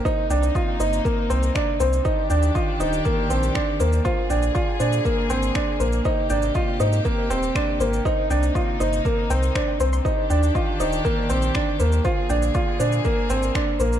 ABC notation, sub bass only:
X:1
M:4/4
L:1/8
Q:1/4=120
K:Cm
V:1 name="Sub bass" clef=bass
z C,, z G,,, z C,, z C,, | z E,, z E,,, z B,,, z E,, | z B,,, z B,, z A,,, z B,,, | z A,,, z A,, z E,,, z A,,, |
z C,, z G,,, z C,, z C,, | z E,, z E,,, z B,,, z E,, | z B,,, z B,, z A,,, z B,,, |]